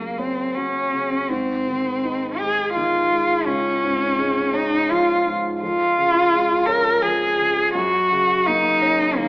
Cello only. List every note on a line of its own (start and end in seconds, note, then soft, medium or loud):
0.00 0.20 A#3 soft
0.18 0.56 C4 soft
0.54 1.30 C#4 soft
1.29 2.40 C4 soft
2.38 2.73 G#4 medium
2.74 3.47 F4 soft
3.45 4.55 C#4 soft
4.54 4.92 D#4 medium
4.90 5.26 F4 soft
5.62 6.67 F4 medium
6.66 7.04 A#4 medium
7.02 7.75 G#4 medium
7.75 8.48 F#4 medium
8.46 9.18 D#4 medium
9.17 9.28 A#3 medium